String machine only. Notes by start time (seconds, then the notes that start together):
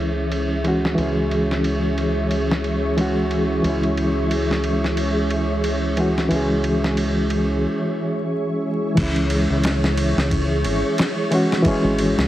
Already playing: G#4 C#5 E5 C#6
8.99 G#4 C#5 E5 C#6